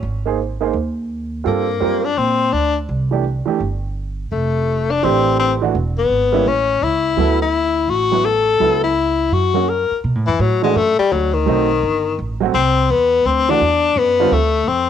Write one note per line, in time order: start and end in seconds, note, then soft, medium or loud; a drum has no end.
0.03 0.70 G#1 medium
0.25 0.37 A#3 medium
0.25 0.37 D#4 medium
0.25 0.37 G#4 medium
0.25 0.38 C5 medium
0.61 0.72 A#3 medium
0.61 0.72 D#4 medium
0.61 0.73 G#4 medium
0.61 0.73 C5 medium
0.73 1.42 D#2 medium
1.44 1.79 G2 medium
1.44 1.65 G3 medium
1.44 2.06 A#3 medium
1.44 1.66 C4 medium
1.44 1.66 F4 medium
1.44 1.66 A4 medium
1.80 2.14 F#2 medium
1.80 2.01 G3 medium
1.80 2.02 C4 medium
1.80 2.02 F4 medium
1.80 2.02 A#4 medium
2.05 2.19 D4 medium
2.17 2.50 A#2 medium
2.17 2.54 C4 medium
2.53 2.86 D2 medium
2.53 2.76 D4 medium
2.89 3.43 C2 medium
3.11 3.23 E3 soft
3.11 3.23 A3 soft
3.11 3.23 D4 medium
3.11 3.24 G4 medium
3.46 3.58 E3 medium
3.46 3.58 A3 medium
3.46 3.59 D4 medium
3.46 3.59 G4 medium
3.46 muted upright bass stroke soft
3.60 4.28 G1 medium
4.31 4.99 F1 medium
4.31 4.92 A3 medium
4.91 5.05 D4 medium
5.03 5.71 A1 medium
5.03 5.57 E3 medium
5.03 5.57 A3 medium
5.03 5.39 C4 medium
5.03 5.58 D4 medium
5.03 5.58 G4 medium
5.40 5.53 C4 medium
5.61 5.73 E3 medium
5.61 5.73 A3 medium
5.61 5.73 D4 medium
5.61 5.74 F#4 medium
5.75 6.08 E1 medium
5.98 6.49 B3 medium
6.09 6.43 G#1 medium
6.32 6.44 G3 medium
6.32 6.44 A#3 medium
6.32 6.45 C#4 medium
6.32 6.45 E4 medium
6.46 6.79 A1 medium
6.46 6.85 C#4 medium
6.81 7.15 C#2 medium
6.81 7.41 E4 medium
7.17 7.85 D2 medium
7.17 7.38 F#3 medium
7.17 7.38 B3 medium
7.17 7.39 E4 medium
7.17 7.39 A4 medium
7.42 7.92 E4 medium
7.88 8.56 A1 medium
7.88 8.27 F#4 medium
8.11 8.23 F#3 medium
8.11 8.23 B3 medium
8.11 8.24 E4 medium
8.11 8.24 B4 medium
8.25 8.83 A4 loud
8.60 9.28 C#2 medium
8.60 8.81 F#3 medium
8.60 8.81 B3 medium
8.60 8.81 E4 medium
8.60 8.82 A4 medium
8.84 9.35 E4 medium
9.32 9.86 F#2 medium
9.32 9.71 F#4 medium
9.54 9.66 F#3 medium
9.54 9.66 A#3 soft
9.54 9.66 C#4 soft
9.54 9.67 F#4 medium
9.70 9.98 A#4 medium
9.91 muted upright bass stroke soft
10.04 10.15 B2 medium
10.15 10.27 A2 medium
10.27 10.39 F#2 medium
10.27 10.42 E3 medium
10.39 10.74 A2 medium
10.39 10.63 F#3 medium
10.62 10.74 E3 medium
10.62 10.78 G#3 medium
10.62 10.74 A3 medium
10.62 10.74 D4 medium
10.62 10.75 F#4 medium
10.75 10.96 F#2 medium
10.75 10.99 A3 medium
10.99 11.14 G3 medium
10.99 muted upright bass stroke soft
11.12 11.46 D2 medium
11.12 11.35 F#3 medium
11.34 12.18 D#3 medium
11.46 11.81 B1 medium
11.46 11.67 F#3 medium
11.46 11.67 A3 medium
11.46 11.67 C4 medium
11.46 11.68 D#4 medium
11.83 12.17 G1 medium
12.18 12.53 A1 medium
12.41 12.52 F#3 medium
12.41 12.52 A3 medium
12.41 12.53 C4 medium
12.41 12.53 F#4 medium
12.54 12.88 C2 medium
12.54 12.93 C4 medium
12.90 13.24 E2 medium
12.90 13.28 B3 medium
13.25 13.60 D2 medium
13.25 13.52 C4 medium
13.49 13.60 E3 medium
13.49 13.60 A3 medium
13.49 13.60 D4 medium
13.49 14.00 D4 medium
13.49 13.61 F#4 medium
13.61 13.95 E2 medium
13.96 14.31 F#2 medium
13.96 14.35 B3 medium
14.20 14.31 D3 medium
14.20 14.31 G3 medium
14.20 14.32 C4 medium
14.20 14.32 F4 medium
14.31 14.66 D2 medium
14.31 14.70 A3 medium
14.68 14.90 F2 medium
14.68 14.90 C4 medium